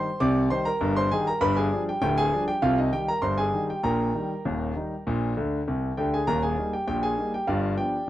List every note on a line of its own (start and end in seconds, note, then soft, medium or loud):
0.00 0.19 C5 medium
0.00 0.19 C6 loud
0.20 0.46 C2 loud
0.20 0.47 C3 loud
0.20 0.49 D5 medium
0.20 0.49 D6 loud
0.50 0.67 D#3 medium
0.50 0.68 G3 medium
0.50 0.68 D#4 medium
0.50 0.65 C5 medium
0.50 0.66 C6 loud
0.65 0.95 A#4 medium
0.65 0.94 A#5 loud
0.81 1.07 G1 loud
0.81 1.07 G2 loud
0.97 1.11 C5 medium
0.97 1.12 C6 loud
1.11 1.28 D#3 medium
1.11 1.28 G3 medium
1.11 1.29 D#4 medium
1.11 1.26 G#4 medium
1.11 1.27 G#5 loud
1.27 1.42 A#4 medium
1.27 1.42 A#5 loud
1.41 1.67 G1 loud
1.41 1.67 G2 loud
1.41 1.56 B4 loud
1.41 1.56 B5 loud
1.57 1.85 G#4 medium
1.57 1.81 G#5 loud
1.72 1.89 F3 medium
1.72 1.89 G3 medium
1.72 1.89 D4 medium
1.89 2.02 G4 medium
1.89 2.00 G5 medium
2.02 2.28 D1 medium
2.02 2.28 D2 loud
2.02 2.17 G4 medium
2.02 2.17 G5 loud
2.18 2.46 G#4 medium
2.18 2.42 G#5 loud
2.32 2.49 F3 medium
2.32 2.49 G3 medium
2.32 2.50 D4 medium
2.48 2.62 G4 medium
2.48 2.63 G5 loud
2.62 2.88 C2 loud
2.62 2.88 C3 loud
2.62 2.77 F4 medium
2.62 2.78 F5 loud
2.78 2.92 D#4 medium
2.78 2.93 D#5 loud
2.93 3.09 D#3 medium
2.93 3.10 G3 medium
2.93 3.10 D#4 medium
2.93 3.08 G4 medium
2.93 3.08 G5 loud
3.08 3.23 A#4 medium
3.08 3.23 A#5 loud
3.22 3.48 G1 medium
3.22 3.48 G2 medium
3.22 3.37 C5 medium
3.22 3.38 C6 loud
3.38 3.67 G#4 medium
3.38 3.62 G#5 loud
3.54 3.70 D#3 medium
3.54 3.70 G3 medium
3.54 3.71 D#4 medium
3.70 3.84 G4 medium
3.70 3.83 G5 medium
3.83 4.09 A#1 medium
3.83 4.09 A#2 loud
3.83 5.63 A#4 medium
3.83 5.63 G5 medium
3.83 5.62 A#5 loud
4.15 4.31 D#3 medium
4.15 4.32 G3 medium
4.15 4.32 D#4 medium
4.45 4.71 D#1 medium
4.45 4.71 D#2 medium
4.76 4.92 D#3 soft
4.76 4.93 G3 medium
4.76 4.93 D#4 medium
5.07 5.32 A#1 medium
5.07 5.32 A#2 loud
5.37 5.59 D2 medium
5.37 5.59 D3 medium
5.68 5.90 C2 medium
5.68 5.90 C3 medium
5.97 6.20 D2 medium
5.97 6.20 D3 medium
5.97 6.12 G4 medium
5.97 6.12 G5 medium
6.14 6.28 G#4 medium
6.14 6.28 G#5 medium
6.27 6.53 D#1 medium
6.27 6.53 D#2 medium
6.27 6.42 A#4 medium
6.27 6.42 A#5 loud
6.42 6.71 G#4 medium
6.42 6.71 G#5 medium
6.57 6.74 G3 medium
6.57 6.74 A#3 medium
6.57 6.75 D#4 medium
6.73 6.87 G4 medium
6.73 6.86 G5 medium
6.87 7.13 A#1 medium
6.87 7.13 A#2 medium
6.87 7.02 G4 medium
6.87 7.03 G5 medium
7.03 7.31 G#4 medium
7.03 7.32 G#5 loud
7.18 7.34 G3 medium
7.18 7.35 A#3 medium
7.18 7.35 D#4 medium
7.34 7.49 G4 medium
7.34 7.49 G5 medium
7.47 7.74 G1 medium
7.47 7.74 G2 loud
7.47 7.77 F4 medium
7.47 7.77 D5 medium
7.47 7.72 F5 medium
7.78 7.95 F3 soft
7.78 7.95 B3 soft
7.78 7.95 D4 medium
7.78 8.09 G4 medium
7.78 8.09 D5 medium
7.78 8.09 G5 medium